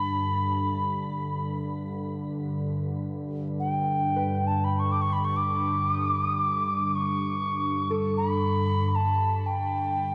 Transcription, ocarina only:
0.00 1.56 B5 medium
3.60 4.49 G5 medium
4.47 4.66 A5 medium
4.64 4.81 B5 medium
4.79 4.93 C#6 medium
4.92 5.03 D6 medium
5.02 5.14 C#6 medium
5.13 5.26 B5 medium
5.25 5.38 C#6 medium
5.36 5.92 D6 medium
5.92 6.08 D#6 medium
6.08 6.24 D6 medium
6.24 6.39 D#6 medium
6.39 6.97 D6 medium
6.95 7.91 C#6 medium
8.17 8.97 B5 medium
8.95 9.48 A5 medium
9.46 10.15 G5 medium

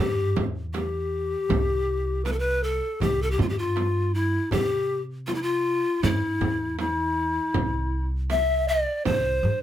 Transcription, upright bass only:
0.00 0.31 G2 medium
0.37 1.34 E2 medium
1.50 2.79 C2 medium
3.02 3.34 C2 medium
3.39 4.36 G2 medium
4.52 5.82 C3 medium
6.03 6.36 G2 medium
6.41 7.38 E2 medium
7.55 8.84 C2 medium
9.06 9.38 C2 medium
9.43 9.63 G2 medium

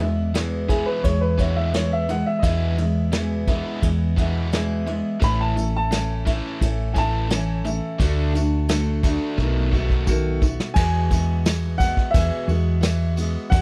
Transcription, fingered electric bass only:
0.00 0.83 E2 medium
1.04 2.22 E2 medium
2.43 3.62 E2 medium
3.83 5.01 E2 medium
5.21 6.40 A1 loud
6.61 7.79 A1 loud
8.00 9.17 D2 loud
9.38 10.55 B1 medium
10.76 11.93 E2 loud
12.15 12.29 E2 medium
12.48 13.36 E2 loud
13.51 13.62 E2 loud

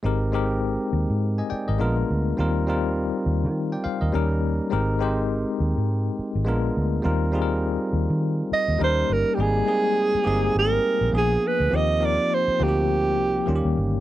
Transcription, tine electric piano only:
0.03 0.24 G#3 medium
0.03 0.25 C4 medium
0.03 0.25 D#4 medium
0.03 0.26 G4 medium
0.03 0.26 A#4 medium
0.32 1.11 G#3 medium
0.32 1.11 C4 medium
0.32 1.11 D#4 medium
0.32 1.12 G4 medium
0.32 1.12 A#4 medium
1.38 1.50 D#5 soft
1.38 1.50 G#5 medium
1.50 1.66 D5 medium
1.50 1.66 G5 medium
1.68 1.80 A#4 soft
1.68 1.95 D#5 medium
1.78 2.27 G#3 medium
1.78 2.28 B3 medium
1.78 2.28 D4 medium
1.78 2.29 F4 medium
1.78 2.29 A#4 medium
2.37 2.58 G3 medium
2.37 2.59 C4 medium
2.37 2.59 D#4 medium
2.37 2.59 F4 medium
2.37 2.60 A#4 medium
2.67 3.45 G3 medium
2.67 3.45 C4 medium
2.67 3.45 D#4 medium
2.67 3.46 F4 medium
2.67 3.27 A#4 medium
3.72 3.84 D5 soft
3.72 3.84 G5 medium
3.84 4.00 C5 medium
3.84 4.00 F5 medium
4.01 4.14 A#4 soft
4.01 4.29 D#5 medium
4.12 4.61 G3 medium
4.12 4.61 A#3 medium
4.12 4.62 C#4 medium
4.12 4.62 D#4 medium
4.12 4.63 A#4 medium
4.70 4.91 G#3 medium
4.70 4.92 C4 medium
4.70 4.92 D#4 medium
4.70 4.93 G4 medium
4.70 4.93 A#4 medium
4.99 5.78 G#3 medium
4.99 5.78 C4 medium
4.99 5.78 D#4 medium
4.99 5.79 G4 medium
4.99 5.79 C5 medium
6.45 6.94 G#3 medium
6.45 6.95 B3 medium
6.45 6.95 D4 medium
6.45 6.96 F4 medium
6.45 6.96 A#4 medium
7.02 7.24 G3 medium
7.02 7.25 C4 medium
7.02 7.25 D#4 medium
7.02 7.25 F4 medium
7.02 7.26 A#4 medium
7.32 8.11 G3 medium
7.32 8.11 C4 medium
7.32 8.12 D#4 medium
7.32 8.12 F4 medium
7.32 7.42 G#4 medium
7.42 8.16 A#4 medium
8.78 9.28 G3 medium
8.78 9.28 A#3 medium
8.78 9.29 C#4 medium
8.78 9.29 D#4 medium
8.78 9.29 A#4 medium
9.37 9.58 G3 medium
9.37 9.59 A#3 medium
9.37 9.59 C4 medium
9.37 9.60 D#4 medium
9.37 9.60 G#4 medium
9.65 10.06 G#3 medium
9.65 10.06 A#3 medium
9.65 10.07 C4 medium
9.65 10.07 D#4 medium
9.65 10.07 G#4 medium
10.24 11.03 A#3 medium
10.24 11.04 C4 medium
10.24 11.04 D#4 medium
10.24 11.03 G4 medium
10.24 11.04 G#4 medium
11.12 11.61 F3 medium
11.12 11.62 A#3 medium
11.12 11.62 B3 medium
11.12 11.63 D4 medium
11.12 11.63 G#4 medium
11.70 11.92 F3 medium
11.70 11.92 A#3 medium
11.70 11.92 C4 medium
11.70 11.93 D#4 medium
11.70 11.93 G4 medium
12.00 12.40 F3 medium
12.00 12.40 A#3 medium
12.00 12.40 C4 medium
12.00 12.41 D#4 medium
12.00 12.41 A#4 medium
12.59 13.37 F3 medium
12.59 13.37 A#3 medium
12.59 13.38 C4 medium
12.59 13.38 D#4 medium
12.59 12.68 F#4 medium
12.68 13.42 G4 medium
13.46 13.95 D#3 medium
13.46 13.96 G3 medium
13.46 13.96 A#3 medium
13.46 13.96 C#4 medium
13.46 13.56 F4 medium
13.56 14.00 G4 medium

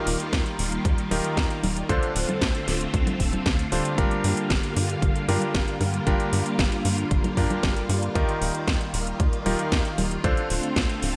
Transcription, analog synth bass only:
0.07 0.17 D#1 medium
0.33 0.43 D#2 medium
0.59 0.79 D#1 medium
0.85 0.95 D#2 medium
1.11 1.21 D#1 medium
1.37 1.47 D#2 medium
1.63 1.83 D#1 medium
1.89 1.99 D2 medium
2.15 2.25 D1 medium
2.42 2.52 D2 medium
2.68 2.88 D1 medium
2.94 3.04 D2 medium
3.20 3.40 D1 medium
3.46 3.66 D2 loud
3.72 3.82 D1 medium
3.98 4.08 G1 loud
4.24 4.34 G2 medium
4.50 4.60 G1 medium
4.76 4.96 G2 medium
5.02 5.12 G1 medium
5.29 5.39 G2 loud
5.55 5.65 G1 medium
5.81 6.01 G2 medium
6.07 6.17 G1 loud
6.33 6.43 G2 medium
6.59 6.69 G1 medium
6.85 7.05 G2 medium
7.11 7.21 G1 medium
7.37 7.47 G2 medium
7.63 7.83 G1 medium
7.89 8.09 G2 medium
8.15 8.25 D#2 medium
8.41 8.52 D#1 loud
8.68 8.78 D#2 medium
8.94 9.14 D#1 medium
9.20 9.30 D#2 medium
9.46 9.56 D#1 loud
9.72 9.82 D#2 medium
9.98 10.18 D#1 medium
10.24 10.34 D2 loud
10.50 10.60 D1 medium
10.76 10.86 D2 medium
11.03 11.16 D1 medium

